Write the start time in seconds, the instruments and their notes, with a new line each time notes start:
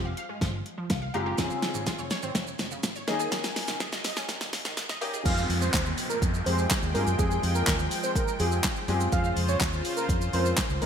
Already playing: fingered electric bass F1
0.05 synth pluck F5
0.17 synth pluck F5, closed hi-hat
0.29 synth pluck G#3
0.41 fingered electric bass G1, synth pluck F3, kick, snare, closed hi-hat
0.66 closed hi-hat
0.78 synth pluck F3
0.90 fingered electric bass C2, grand piano F5, kick, snare, closed hi-hat
1.02 synth pluck F5
1.14 fingered electric bass F#1, grand piano G#3 C4 F4 G4 A#5, synth pluck F5, closed hi-hat
1.26 synth pluck G4
1.38 fingered electric bass F1, synth pluck C#3, grand piano C4 C#4 F4 G#4, kick, snare, closed hi-hat, shaker
1.50 synth pluck C#3, shaker
1.62 snare, closed hi-hat, shaker
1.74 fingered electric bass G#1, synth pluck C#3, shaker
1.86 synth pluck F4, kick, snare, closed hi-hat, shaker
1.99 fingered electric bass F1, synth pluck C#5, shaker
2.11 synth pluck C#5, snare, closed hi-hat, shaker
2.23 fingered electric bass G#1, synth pluck C4, shaker
2.35 fingered electric bass F1, synth pluck C#3, kick, snare, closed hi-hat, shaker
2.47 shaker
2.59 fingered electric bass F1, snare, closed hi-hat, shaker
2.71 synth pluck C#3, shaker
2.83 fingered electric bass G#1, kick, snare, closed hi-hat, shaker
2.95 synth pluck C#5, shaker
3.07 fingered electric bass D#2, grand piano A#3 C#4 D#4 G#4, synth pluck D#5, snare, closed hi-hat, shaker
3.20 synth pluck G#4, shaker
3.32 fingered electric bass D#2, synth pluck D#3, kick, snare, closed hi-hat, shaker
3.44 synth pluck D#3, snare, shaker
3.56 snare, open hi-hat, shaker
3.68 fingered electric bass C2, synth pluck D#3, snare, shaker
3.80 fingered electric bass C#2, synth pluck G#4, kick, snare, closed hi-hat, shaker
3.92 synth pluck D#5, snare, shaker
4.04 synth pluck D#5, snare, open hi-hat, shaker
4.17 synth pluck C#4, snare, shaker
4.28 synth pluck D#3, kick, snare, closed hi-hat, shaker
4.41 fingered electric bass D#2, snare, shaker
4.53 fingered electric bass C2, snare, open hi-hat, shaker
4.65 fingered electric bass C#2, synth pluck D#3, snare, shaker
4.77 snare, closed hi-hat, shaker
4.89 fingered electric bass D#2, synth pluck D#5, snare, shaker
5.01 fingered electric bass F#2, grand piano A#3 C#4 D#4 G4, synth pluck D#5, open hi-hat, shaker
5.13 synth pluck G#4, shaker
5.25 fingered electric bass F2, supersaw synth F3 G#3 G5, grand piano G#3 C4 F4 G4 G#4, analog synth lead F5, kick, closed hi-hat, crash, downlifter, shaker
5.38 shaker
5.50 fingered electric bass F2, open hi-hat, shaker
5.61 analog synth lead C5, shaker
5.74 fingered electric bass D#2, analog synth lead C5, kick, snare, clap, closed hi-hat, shaker
5.86 shaker
5.98 open hi-hat, shaker
6.10 analog synth lead A#4, shaker
6.22 fingered electric bass F2, kick, closed hi-hat, shaker
6.34 shaker
6.46 fingered electric bass F2, grand piano G#3 C4 F4 G4 G#4, analog synth lead C5, open hi-hat, shaker
6.58 shaker
6.70 kick, snare, clap, closed hi-hat, shaker
6.83 fingered electric bass D#2, shaker
6.94 fingered electric bass G2, grand piano G#3 C4 F4 G4 G#4, analog synth lead A#4, open hi-hat, shaker
7.07 fingered electric bass F#2, shaker
7.19 fingered electric bass F2, grand piano G#3 C4 F4 G4 G#4, analog synth lead G#4, kick, closed hi-hat, shaker
7.31 shaker
7.43 fingered electric bass F2, open hi-hat, shaker
7.55 analog synth lead A#4, shaker
7.67 fingered electric bass D#2, analog synth lead A#4, kick, snare, clap, closed hi-hat, shaker
7.79 shaker
7.91 open hi-hat, shaker
8.03 analog synth lead C5, shaker
8.16 analog synth lead A#4, kick, closed hi-hat, shaker
8.28 shaker
8.40 fingered electric bass F2, grand piano G#3 C4 F4 G4 G#4, analog synth lead G#4, open hi-hat, shaker
8.52 shaker
8.64 kick, snare, clap, closed hi-hat, shaker
8.76 shaker
8.88 fingered electric bass F#2, grand piano G#3 C4 F4 G4 G#4, open hi-hat, shaker
9.00 shaker
9.12 fingered electric bass F2, supersaw synth C#3 F4 C5, grand piano G#3 C4 C#4 F4 G#4, analog synth lead F5, kick, closed hi-hat, shaker
9.24 shaker
9.37 fingered electric bass F2, open hi-hat, shaker
9.48 analog synth lead C#5, shaker
9.61 fingered electric bass D#2, kick, snare, clap, closed hi-hat, shaker
9.73 shaker
9.85 open hi-hat, shaker
9.97 analog synth lead A#4, shaker
10.09 fingered electric bass F2, kick, closed hi-hat, shaker
10.21 shaker
10.33 fingered electric bass F2, grand piano G#3 C4 C#4 F4 A#4, analog synth lead C5, open hi-hat, shaker
10.45 shaker
10.57 kick, snare, clap, closed hi-hat, shaker
10.70 fingered electric bass C#2, shaker
10.82 fingered electric bass D#2, supersaw synth C#3 G#3 D#4, grand piano G#3 A#3 C#4 D#4 G#4, analog synth lead A#4, open hi-hat, shaker